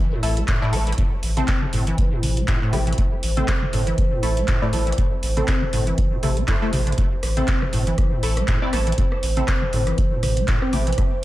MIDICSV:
0, 0, Header, 1, 6, 480
1, 0, Start_track
1, 0, Key_signature, 0, "minor"
1, 0, Tempo, 500000
1, 941, Time_signature, 4, 2, 24, 8
1, 10794, End_track
2, 0, Start_track
2, 0, Title_t, "Analog synth pad"
2, 0, Program_c, 0, 89
2, 0, Note_on_c, 0, 72, 86
2, 6688, Note_off_c, 0, 72, 0
2, 6700, Note_on_c, 0, 72, 86
2, 10794, Note_off_c, 0, 72, 0
2, 10794, End_track
3, 0, Start_track
3, 0, Title_t, "Synth stab"
3, 0, Program_c, 1, 62
3, 218, Note_on_c, 1, 64, 84
3, 218, Note_on_c, 1, 69, 98
3, 219, Note_on_c, 1, 57, 91
3, 375, Note_off_c, 1, 57, 0
3, 375, Note_off_c, 1, 64, 0
3, 375, Note_off_c, 1, 69, 0
3, 594, Note_on_c, 1, 57, 98
3, 594, Note_on_c, 1, 64, 89
3, 594, Note_on_c, 1, 74, 107
3, 673, Note_off_c, 1, 57, 0
3, 673, Note_off_c, 1, 64, 0
3, 673, Note_off_c, 1, 74, 0
3, 697, Note_on_c, 1, 57, 88
3, 697, Note_on_c, 1, 64, 83
3, 698, Note_on_c, 1, 69, 98
3, 854, Note_off_c, 1, 57, 0
3, 854, Note_off_c, 1, 64, 0
3, 854, Note_off_c, 1, 69, 0
3, 1314, Note_on_c, 1, 57, 76
3, 1314, Note_on_c, 1, 64, 73
3, 1314, Note_on_c, 1, 69, 87
3, 1446, Note_off_c, 1, 57, 0
3, 1446, Note_off_c, 1, 64, 0
3, 1446, Note_off_c, 1, 69, 0
3, 2619, Note_on_c, 1, 57, 85
3, 2619, Note_on_c, 1, 64, 78
3, 2619, Note_on_c, 1, 67, 93
3, 2720, Note_off_c, 1, 57, 0
3, 2720, Note_off_c, 1, 64, 0
3, 2721, Note_off_c, 1, 67, 0
3, 3234, Note_on_c, 1, 57, 88
3, 3234, Note_on_c, 1, 64, 80
3, 3234, Note_on_c, 1, 69, 97
3, 3366, Note_off_c, 1, 57, 0
3, 3366, Note_off_c, 1, 64, 0
3, 3366, Note_off_c, 1, 69, 0
3, 4058, Note_on_c, 1, 69, 99
3, 4059, Note_on_c, 1, 57, 91
3, 4059, Note_on_c, 1, 64, 82
3, 4215, Note_off_c, 1, 57, 0
3, 4215, Note_off_c, 1, 64, 0
3, 4215, Note_off_c, 1, 69, 0
3, 4434, Note_on_c, 1, 57, 98
3, 4434, Note_on_c, 1, 64, 89
3, 4434, Note_on_c, 1, 74, 104
3, 4513, Note_off_c, 1, 57, 0
3, 4513, Note_off_c, 1, 64, 0
3, 4513, Note_off_c, 1, 74, 0
3, 4539, Note_on_c, 1, 64, 84
3, 4540, Note_on_c, 1, 57, 88
3, 4540, Note_on_c, 1, 69, 98
3, 4695, Note_off_c, 1, 57, 0
3, 4695, Note_off_c, 1, 64, 0
3, 4695, Note_off_c, 1, 69, 0
3, 5153, Note_on_c, 1, 57, 78
3, 5153, Note_on_c, 1, 64, 72
3, 5154, Note_on_c, 1, 69, 85
3, 5285, Note_off_c, 1, 57, 0
3, 5285, Note_off_c, 1, 64, 0
3, 5286, Note_off_c, 1, 69, 0
3, 5980, Note_on_c, 1, 57, 74
3, 5980, Note_on_c, 1, 64, 71
3, 5980, Note_on_c, 1, 69, 81
3, 6081, Note_off_c, 1, 57, 0
3, 6081, Note_off_c, 1, 64, 0
3, 6081, Note_off_c, 1, 69, 0
3, 6218, Note_on_c, 1, 57, 100
3, 6218, Note_on_c, 1, 64, 95
3, 6219, Note_on_c, 1, 72, 107
3, 6334, Note_off_c, 1, 57, 0
3, 6334, Note_off_c, 1, 64, 0
3, 6334, Note_off_c, 1, 72, 0
3, 6354, Note_on_c, 1, 57, 84
3, 6354, Note_on_c, 1, 64, 78
3, 6354, Note_on_c, 1, 69, 94
3, 6433, Note_off_c, 1, 57, 0
3, 6433, Note_off_c, 1, 64, 0
3, 6433, Note_off_c, 1, 69, 0
3, 7075, Note_on_c, 1, 57, 87
3, 7075, Note_on_c, 1, 64, 82
3, 7075, Note_on_c, 1, 69, 97
3, 7206, Note_off_c, 1, 57, 0
3, 7206, Note_off_c, 1, 64, 0
3, 7206, Note_off_c, 1, 69, 0
3, 7900, Note_on_c, 1, 57, 91
3, 7900, Note_on_c, 1, 64, 83
3, 7900, Note_on_c, 1, 69, 102
3, 8055, Note_off_c, 1, 69, 0
3, 8056, Note_off_c, 1, 57, 0
3, 8056, Note_off_c, 1, 64, 0
3, 8274, Note_on_c, 1, 57, 94
3, 8275, Note_on_c, 1, 64, 87
3, 8275, Note_on_c, 1, 74, 110
3, 8353, Note_off_c, 1, 57, 0
3, 8353, Note_off_c, 1, 74, 0
3, 8354, Note_off_c, 1, 64, 0
3, 8380, Note_on_c, 1, 57, 90
3, 8380, Note_on_c, 1, 64, 82
3, 8380, Note_on_c, 1, 69, 99
3, 8535, Note_off_c, 1, 57, 0
3, 8535, Note_off_c, 1, 69, 0
3, 8536, Note_off_c, 1, 64, 0
3, 8994, Note_on_c, 1, 64, 73
3, 8995, Note_on_c, 1, 57, 80
3, 8995, Note_on_c, 1, 69, 86
3, 9126, Note_off_c, 1, 57, 0
3, 9126, Note_off_c, 1, 64, 0
3, 9126, Note_off_c, 1, 69, 0
3, 10299, Note_on_c, 1, 57, 83
3, 10299, Note_on_c, 1, 64, 76
3, 10300, Note_on_c, 1, 67, 92
3, 10400, Note_off_c, 1, 64, 0
3, 10401, Note_off_c, 1, 57, 0
3, 10401, Note_off_c, 1, 67, 0
3, 10794, End_track
4, 0, Start_track
4, 0, Title_t, "Acid bass"
4, 0, Program_c, 2, 38
4, 0, Note_on_c, 2, 52, 75
4, 115, Note_on_c, 2, 45, 78
4, 129, Note_off_c, 2, 52, 0
4, 355, Note_on_c, 2, 57, 100
4, 369, Note_off_c, 2, 45, 0
4, 442, Note_off_c, 2, 57, 0
4, 461, Note_on_c, 2, 45, 84
4, 572, Note_off_c, 2, 45, 0
4, 597, Note_on_c, 2, 45, 100
4, 702, Note_on_c, 2, 57, 79
4, 716, Note_off_c, 2, 45, 0
4, 746, Note_off_c, 2, 57, 0
4, 837, Note_on_c, 2, 52, 75
4, 894, Note_off_c, 2, 52, 0
4, 941, Note_on_c, 2, 45, 83
4, 985, Note_off_c, 2, 45, 0
4, 1317, Note_on_c, 2, 60, 76
4, 1556, Note_on_c, 2, 45, 77
4, 1570, Note_off_c, 2, 60, 0
4, 1590, Note_off_c, 2, 45, 0
4, 1660, Note_on_c, 2, 45, 77
4, 1772, Note_off_c, 2, 45, 0
4, 1795, Note_on_c, 2, 52, 77
4, 2035, Note_on_c, 2, 45, 78
4, 2050, Note_off_c, 2, 52, 0
4, 2276, Note_on_c, 2, 57, 102
4, 2290, Note_off_c, 2, 45, 0
4, 2362, Note_off_c, 2, 57, 0
4, 2381, Note_on_c, 2, 45, 83
4, 2492, Note_off_c, 2, 45, 0
4, 2515, Note_on_c, 2, 45, 99
4, 2620, Note_on_c, 2, 57, 77
4, 2634, Note_off_c, 2, 45, 0
4, 2665, Note_off_c, 2, 57, 0
4, 2755, Note_on_c, 2, 52, 77
4, 2813, Note_off_c, 2, 52, 0
4, 2859, Note_on_c, 2, 45, 83
4, 2904, Note_off_c, 2, 45, 0
4, 3235, Note_on_c, 2, 60, 75
4, 3475, Note_on_c, 2, 45, 76
4, 3490, Note_off_c, 2, 60, 0
4, 3510, Note_off_c, 2, 45, 0
4, 3580, Note_on_c, 2, 45, 74
4, 3691, Note_off_c, 2, 45, 0
4, 3714, Note_on_c, 2, 52, 75
4, 3954, Note_on_c, 2, 45, 79
4, 3969, Note_off_c, 2, 52, 0
4, 4196, Note_on_c, 2, 57, 104
4, 4210, Note_off_c, 2, 45, 0
4, 4282, Note_off_c, 2, 57, 0
4, 4300, Note_on_c, 2, 45, 85
4, 4412, Note_off_c, 2, 45, 0
4, 4435, Note_on_c, 2, 45, 101
4, 4541, Note_on_c, 2, 57, 78
4, 4555, Note_off_c, 2, 45, 0
4, 4585, Note_off_c, 2, 57, 0
4, 4676, Note_on_c, 2, 52, 76
4, 4733, Note_off_c, 2, 52, 0
4, 4781, Note_on_c, 2, 45, 80
4, 4825, Note_off_c, 2, 45, 0
4, 5156, Note_on_c, 2, 60, 79
4, 5395, Note_on_c, 2, 45, 74
4, 5410, Note_off_c, 2, 60, 0
4, 5430, Note_off_c, 2, 45, 0
4, 5501, Note_on_c, 2, 45, 76
4, 5612, Note_off_c, 2, 45, 0
4, 5635, Note_on_c, 2, 52, 75
4, 5875, Note_on_c, 2, 45, 78
4, 5890, Note_off_c, 2, 52, 0
4, 5933, Note_off_c, 2, 45, 0
4, 5980, Note_on_c, 2, 48, 80
4, 6115, Note_on_c, 2, 60, 101
4, 6129, Note_off_c, 2, 48, 0
4, 6173, Note_off_c, 2, 60, 0
4, 6221, Note_on_c, 2, 43, 81
4, 6295, Note_off_c, 2, 43, 0
4, 6355, Note_on_c, 2, 57, 98
4, 6442, Note_off_c, 2, 57, 0
4, 6460, Note_on_c, 2, 48, 76
4, 6535, Note_off_c, 2, 48, 0
4, 6595, Note_on_c, 2, 50, 77
4, 6653, Note_off_c, 2, 50, 0
4, 6699, Note_on_c, 2, 45, 81
4, 6744, Note_off_c, 2, 45, 0
4, 7074, Note_on_c, 2, 60, 77
4, 7312, Note_on_c, 2, 45, 76
4, 7327, Note_off_c, 2, 60, 0
4, 7349, Note_off_c, 2, 45, 0
4, 7418, Note_on_c, 2, 45, 74
4, 7531, Note_off_c, 2, 45, 0
4, 7554, Note_on_c, 2, 52, 77
4, 7793, Note_on_c, 2, 45, 76
4, 7808, Note_off_c, 2, 52, 0
4, 8033, Note_on_c, 2, 57, 100
4, 8048, Note_off_c, 2, 45, 0
4, 8121, Note_off_c, 2, 57, 0
4, 8139, Note_on_c, 2, 45, 84
4, 8251, Note_off_c, 2, 45, 0
4, 8274, Note_on_c, 2, 60, 76
4, 8379, Note_on_c, 2, 57, 78
4, 8394, Note_off_c, 2, 60, 0
4, 8424, Note_off_c, 2, 57, 0
4, 8515, Note_on_c, 2, 52, 74
4, 8573, Note_off_c, 2, 52, 0
4, 8619, Note_on_c, 2, 45, 82
4, 8664, Note_off_c, 2, 45, 0
4, 8995, Note_on_c, 2, 60, 77
4, 9236, Note_on_c, 2, 45, 76
4, 9250, Note_off_c, 2, 60, 0
4, 9270, Note_off_c, 2, 45, 0
4, 9340, Note_on_c, 2, 45, 76
4, 9452, Note_off_c, 2, 45, 0
4, 9475, Note_on_c, 2, 52, 78
4, 9715, Note_on_c, 2, 45, 75
4, 9730, Note_off_c, 2, 52, 0
4, 9955, Note_on_c, 2, 57, 104
4, 9970, Note_off_c, 2, 45, 0
4, 10042, Note_off_c, 2, 57, 0
4, 10061, Note_on_c, 2, 45, 85
4, 10172, Note_off_c, 2, 45, 0
4, 10194, Note_on_c, 2, 60, 75
4, 10300, Note_on_c, 2, 57, 75
4, 10314, Note_off_c, 2, 60, 0
4, 10344, Note_off_c, 2, 57, 0
4, 10435, Note_on_c, 2, 52, 75
4, 10493, Note_off_c, 2, 52, 0
4, 10539, Note_on_c, 2, 45, 83
4, 10584, Note_off_c, 2, 45, 0
4, 10794, End_track
5, 0, Start_track
5, 0, Title_t, "Sub bass"
5, 0, Program_c, 3, 38
5, 220, Note_on_c, 3, 33, 82
5, 406, Note_off_c, 3, 33, 0
5, 701, Note_on_c, 3, 33, 98
5, 886, Note_off_c, 3, 33, 0
5, 1180, Note_on_c, 3, 33, 102
5, 1366, Note_off_c, 3, 33, 0
5, 1661, Note_on_c, 3, 31, 82
5, 1846, Note_off_c, 3, 31, 0
5, 2141, Note_on_c, 3, 33, 85
5, 2326, Note_off_c, 3, 33, 0
5, 2621, Note_on_c, 3, 33, 100
5, 2806, Note_off_c, 3, 33, 0
5, 3102, Note_on_c, 3, 33, 98
5, 3287, Note_off_c, 3, 33, 0
5, 3580, Note_on_c, 3, 31, 82
5, 3766, Note_off_c, 3, 31, 0
5, 4060, Note_on_c, 3, 33, 83
5, 4246, Note_off_c, 3, 33, 0
5, 4540, Note_on_c, 3, 33, 98
5, 4726, Note_off_c, 3, 33, 0
5, 5020, Note_on_c, 3, 33, 98
5, 5205, Note_off_c, 3, 33, 0
5, 5500, Note_on_c, 3, 31, 82
5, 5685, Note_off_c, 3, 31, 0
5, 5980, Note_on_c, 3, 33, 84
5, 6166, Note_off_c, 3, 33, 0
5, 6460, Note_on_c, 3, 33, 88
5, 6646, Note_off_c, 3, 33, 0
5, 6939, Note_on_c, 3, 33, 98
5, 7125, Note_off_c, 3, 33, 0
5, 7419, Note_on_c, 3, 31, 81
5, 7605, Note_off_c, 3, 31, 0
5, 7899, Note_on_c, 3, 33, 83
5, 8085, Note_off_c, 3, 33, 0
5, 8379, Note_on_c, 3, 33, 101
5, 8565, Note_off_c, 3, 33, 0
5, 8860, Note_on_c, 3, 33, 98
5, 9045, Note_off_c, 3, 33, 0
5, 9339, Note_on_c, 3, 31, 80
5, 9525, Note_off_c, 3, 31, 0
5, 9819, Note_on_c, 3, 33, 80
5, 10005, Note_off_c, 3, 33, 0
5, 10299, Note_on_c, 3, 33, 101
5, 10485, Note_off_c, 3, 33, 0
5, 10794, End_track
6, 0, Start_track
6, 0, Title_t, "Drums"
6, 220, Note_on_c, 9, 46, 104
6, 316, Note_off_c, 9, 46, 0
6, 355, Note_on_c, 9, 42, 56
6, 451, Note_off_c, 9, 42, 0
6, 459, Note_on_c, 9, 39, 115
6, 460, Note_on_c, 9, 36, 108
6, 460, Note_on_c, 9, 42, 66
6, 555, Note_off_c, 9, 39, 0
6, 556, Note_off_c, 9, 36, 0
6, 556, Note_off_c, 9, 42, 0
6, 699, Note_on_c, 9, 46, 91
6, 795, Note_off_c, 9, 46, 0
6, 835, Note_on_c, 9, 42, 51
6, 887, Note_off_c, 9, 42, 0
6, 887, Note_on_c, 9, 42, 69
6, 940, Note_off_c, 9, 42, 0
6, 940, Note_on_c, 9, 36, 124
6, 940, Note_on_c, 9, 42, 65
6, 1036, Note_off_c, 9, 36, 0
6, 1036, Note_off_c, 9, 42, 0
6, 1179, Note_on_c, 9, 46, 106
6, 1275, Note_off_c, 9, 46, 0
6, 1315, Note_on_c, 9, 42, 53
6, 1315, Note_on_c, 9, 47, 91
6, 1411, Note_off_c, 9, 42, 0
6, 1411, Note_off_c, 9, 47, 0
6, 1419, Note_on_c, 9, 39, 124
6, 1420, Note_on_c, 9, 36, 107
6, 1420, Note_on_c, 9, 42, 65
6, 1515, Note_off_c, 9, 39, 0
6, 1516, Note_off_c, 9, 36, 0
6, 1516, Note_off_c, 9, 42, 0
6, 1555, Note_on_c, 9, 47, 96
6, 1651, Note_off_c, 9, 47, 0
6, 1659, Note_on_c, 9, 46, 96
6, 1755, Note_off_c, 9, 46, 0
6, 1796, Note_on_c, 9, 42, 53
6, 1892, Note_off_c, 9, 42, 0
6, 1901, Note_on_c, 9, 36, 122
6, 1901, Note_on_c, 9, 42, 66
6, 1997, Note_off_c, 9, 36, 0
6, 1997, Note_off_c, 9, 42, 0
6, 2141, Note_on_c, 9, 46, 110
6, 2141, Note_on_c, 9, 47, 94
6, 2237, Note_off_c, 9, 46, 0
6, 2237, Note_off_c, 9, 47, 0
6, 2276, Note_on_c, 9, 42, 54
6, 2372, Note_off_c, 9, 42, 0
6, 2379, Note_on_c, 9, 39, 120
6, 2381, Note_on_c, 9, 36, 110
6, 2381, Note_on_c, 9, 42, 66
6, 2475, Note_off_c, 9, 39, 0
6, 2477, Note_off_c, 9, 36, 0
6, 2477, Note_off_c, 9, 42, 0
6, 2620, Note_on_c, 9, 46, 94
6, 2620, Note_on_c, 9, 47, 98
6, 2716, Note_off_c, 9, 46, 0
6, 2716, Note_off_c, 9, 47, 0
6, 2756, Note_on_c, 9, 42, 49
6, 2808, Note_off_c, 9, 42, 0
6, 2808, Note_on_c, 9, 42, 65
6, 2860, Note_off_c, 9, 42, 0
6, 2860, Note_on_c, 9, 36, 121
6, 2860, Note_on_c, 9, 42, 61
6, 2956, Note_off_c, 9, 36, 0
6, 2956, Note_off_c, 9, 42, 0
6, 3100, Note_on_c, 9, 46, 112
6, 3196, Note_off_c, 9, 46, 0
6, 3236, Note_on_c, 9, 42, 51
6, 3236, Note_on_c, 9, 47, 91
6, 3332, Note_off_c, 9, 42, 0
6, 3332, Note_off_c, 9, 47, 0
6, 3340, Note_on_c, 9, 36, 110
6, 3340, Note_on_c, 9, 39, 125
6, 3341, Note_on_c, 9, 42, 63
6, 3436, Note_off_c, 9, 36, 0
6, 3436, Note_off_c, 9, 39, 0
6, 3437, Note_off_c, 9, 42, 0
6, 3476, Note_on_c, 9, 47, 93
6, 3572, Note_off_c, 9, 47, 0
6, 3581, Note_on_c, 9, 46, 96
6, 3677, Note_off_c, 9, 46, 0
6, 3715, Note_on_c, 9, 42, 51
6, 3811, Note_off_c, 9, 42, 0
6, 3820, Note_on_c, 9, 36, 122
6, 3820, Note_on_c, 9, 42, 64
6, 3916, Note_off_c, 9, 36, 0
6, 3916, Note_off_c, 9, 42, 0
6, 4060, Note_on_c, 9, 46, 109
6, 4156, Note_off_c, 9, 46, 0
6, 4196, Note_on_c, 9, 42, 52
6, 4292, Note_off_c, 9, 42, 0
6, 4298, Note_on_c, 9, 39, 115
6, 4300, Note_on_c, 9, 36, 114
6, 4300, Note_on_c, 9, 42, 63
6, 4394, Note_off_c, 9, 39, 0
6, 4396, Note_off_c, 9, 36, 0
6, 4396, Note_off_c, 9, 42, 0
6, 4540, Note_on_c, 9, 46, 98
6, 4636, Note_off_c, 9, 46, 0
6, 4675, Note_on_c, 9, 42, 47
6, 4727, Note_off_c, 9, 42, 0
6, 4727, Note_on_c, 9, 42, 63
6, 4780, Note_on_c, 9, 36, 119
6, 4781, Note_off_c, 9, 42, 0
6, 4781, Note_on_c, 9, 42, 61
6, 4876, Note_off_c, 9, 36, 0
6, 4877, Note_off_c, 9, 42, 0
6, 5019, Note_on_c, 9, 46, 109
6, 5115, Note_off_c, 9, 46, 0
6, 5154, Note_on_c, 9, 42, 47
6, 5154, Note_on_c, 9, 47, 89
6, 5250, Note_off_c, 9, 42, 0
6, 5250, Note_off_c, 9, 47, 0
6, 5258, Note_on_c, 9, 39, 118
6, 5259, Note_on_c, 9, 42, 65
6, 5260, Note_on_c, 9, 36, 106
6, 5354, Note_off_c, 9, 39, 0
6, 5355, Note_off_c, 9, 42, 0
6, 5356, Note_off_c, 9, 36, 0
6, 5395, Note_on_c, 9, 47, 88
6, 5491, Note_off_c, 9, 47, 0
6, 5500, Note_on_c, 9, 46, 99
6, 5596, Note_off_c, 9, 46, 0
6, 5635, Note_on_c, 9, 42, 52
6, 5731, Note_off_c, 9, 42, 0
6, 5740, Note_on_c, 9, 36, 125
6, 5740, Note_on_c, 9, 42, 62
6, 5836, Note_off_c, 9, 36, 0
6, 5836, Note_off_c, 9, 42, 0
6, 5980, Note_on_c, 9, 46, 108
6, 5980, Note_on_c, 9, 47, 86
6, 6076, Note_off_c, 9, 46, 0
6, 6076, Note_off_c, 9, 47, 0
6, 6114, Note_on_c, 9, 42, 51
6, 6210, Note_off_c, 9, 42, 0
6, 6218, Note_on_c, 9, 39, 112
6, 6219, Note_on_c, 9, 42, 61
6, 6220, Note_on_c, 9, 36, 113
6, 6314, Note_off_c, 9, 39, 0
6, 6315, Note_off_c, 9, 42, 0
6, 6316, Note_off_c, 9, 36, 0
6, 6459, Note_on_c, 9, 46, 95
6, 6459, Note_on_c, 9, 47, 92
6, 6555, Note_off_c, 9, 46, 0
6, 6555, Note_off_c, 9, 47, 0
6, 6595, Note_on_c, 9, 42, 46
6, 6647, Note_off_c, 9, 42, 0
6, 6647, Note_on_c, 9, 42, 59
6, 6699, Note_off_c, 9, 42, 0
6, 6699, Note_on_c, 9, 42, 62
6, 6700, Note_on_c, 9, 36, 121
6, 6795, Note_off_c, 9, 42, 0
6, 6796, Note_off_c, 9, 36, 0
6, 6940, Note_on_c, 9, 37, 59
6, 6940, Note_on_c, 9, 46, 107
6, 7036, Note_off_c, 9, 37, 0
6, 7036, Note_off_c, 9, 46, 0
6, 7074, Note_on_c, 9, 42, 49
6, 7074, Note_on_c, 9, 47, 86
6, 7170, Note_off_c, 9, 42, 0
6, 7170, Note_off_c, 9, 47, 0
6, 7178, Note_on_c, 9, 39, 112
6, 7179, Note_on_c, 9, 42, 64
6, 7180, Note_on_c, 9, 36, 105
6, 7274, Note_off_c, 9, 39, 0
6, 7275, Note_off_c, 9, 42, 0
6, 7276, Note_off_c, 9, 36, 0
6, 7315, Note_on_c, 9, 37, 59
6, 7315, Note_on_c, 9, 47, 89
6, 7411, Note_off_c, 9, 37, 0
6, 7411, Note_off_c, 9, 47, 0
6, 7419, Note_on_c, 9, 46, 96
6, 7515, Note_off_c, 9, 46, 0
6, 7555, Note_on_c, 9, 42, 52
6, 7651, Note_off_c, 9, 42, 0
6, 7660, Note_on_c, 9, 36, 119
6, 7660, Note_on_c, 9, 37, 59
6, 7660, Note_on_c, 9, 42, 64
6, 7756, Note_off_c, 9, 36, 0
6, 7756, Note_off_c, 9, 37, 0
6, 7756, Note_off_c, 9, 42, 0
6, 7900, Note_on_c, 9, 46, 107
6, 7996, Note_off_c, 9, 46, 0
6, 8035, Note_on_c, 9, 37, 60
6, 8035, Note_on_c, 9, 42, 53
6, 8131, Note_off_c, 9, 37, 0
6, 8131, Note_off_c, 9, 42, 0
6, 8139, Note_on_c, 9, 36, 110
6, 8139, Note_on_c, 9, 39, 110
6, 8140, Note_on_c, 9, 42, 60
6, 8235, Note_off_c, 9, 36, 0
6, 8235, Note_off_c, 9, 39, 0
6, 8236, Note_off_c, 9, 42, 0
6, 8380, Note_on_c, 9, 37, 60
6, 8380, Note_on_c, 9, 46, 95
6, 8476, Note_off_c, 9, 37, 0
6, 8476, Note_off_c, 9, 46, 0
6, 8515, Note_on_c, 9, 42, 48
6, 8566, Note_off_c, 9, 42, 0
6, 8566, Note_on_c, 9, 42, 60
6, 8619, Note_on_c, 9, 36, 117
6, 8620, Note_off_c, 9, 42, 0
6, 8620, Note_on_c, 9, 42, 63
6, 8715, Note_off_c, 9, 36, 0
6, 8716, Note_off_c, 9, 42, 0
6, 8754, Note_on_c, 9, 37, 57
6, 8850, Note_off_c, 9, 37, 0
6, 8860, Note_on_c, 9, 46, 99
6, 8956, Note_off_c, 9, 46, 0
6, 8994, Note_on_c, 9, 42, 51
6, 8994, Note_on_c, 9, 47, 86
6, 9090, Note_off_c, 9, 42, 0
6, 9090, Note_off_c, 9, 47, 0
6, 9099, Note_on_c, 9, 39, 116
6, 9100, Note_on_c, 9, 36, 103
6, 9100, Note_on_c, 9, 37, 59
6, 9100, Note_on_c, 9, 42, 66
6, 9195, Note_off_c, 9, 39, 0
6, 9196, Note_off_c, 9, 36, 0
6, 9196, Note_off_c, 9, 37, 0
6, 9196, Note_off_c, 9, 42, 0
6, 9234, Note_on_c, 9, 47, 87
6, 9330, Note_off_c, 9, 47, 0
6, 9339, Note_on_c, 9, 46, 92
6, 9435, Note_off_c, 9, 46, 0
6, 9474, Note_on_c, 9, 37, 58
6, 9474, Note_on_c, 9, 42, 51
6, 9570, Note_off_c, 9, 37, 0
6, 9570, Note_off_c, 9, 42, 0
6, 9580, Note_on_c, 9, 36, 113
6, 9580, Note_on_c, 9, 42, 64
6, 9676, Note_off_c, 9, 36, 0
6, 9676, Note_off_c, 9, 42, 0
6, 9820, Note_on_c, 9, 37, 55
6, 9820, Note_on_c, 9, 46, 98
6, 9820, Note_on_c, 9, 47, 90
6, 9916, Note_off_c, 9, 37, 0
6, 9916, Note_off_c, 9, 46, 0
6, 9916, Note_off_c, 9, 47, 0
6, 9955, Note_on_c, 9, 42, 53
6, 10051, Note_off_c, 9, 42, 0
6, 10059, Note_on_c, 9, 39, 111
6, 10060, Note_on_c, 9, 36, 102
6, 10060, Note_on_c, 9, 42, 64
6, 10155, Note_off_c, 9, 39, 0
6, 10156, Note_off_c, 9, 36, 0
6, 10156, Note_off_c, 9, 42, 0
6, 10196, Note_on_c, 9, 37, 59
6, 10292, Note_off_c, 9, 37, 0
6, 10300, Note_on_c, 9, 46, 94
6, 10300, Note_on_c, 9, 47, 88
6, 10396, Note_off_c, 9, 46, 0
6, 10396, Note_off_c, 9, 47, 0
6, 10435, Note_on_c, 9, 42, 49
6, 10488, Note_off_c, 9, 42, 0
6, 10488, Note_on_c, 9, 42, 64
6, 10540, Note_off_c, 9, 42, 0
6, 10540, Note_on_c, 9, 36, 112
6, 10540, Note_on_c, 9, 37, 55
6, 10540, Note_on_c, 9, 42, 68
6, 10636, Note_off_c, 9, 36, 0
6, 10636, Note_off_c, 9, 37, 0
6, 10636, Note_off_c, 9, 42, 0
6, 10794, End_track
0, 0, End_of_file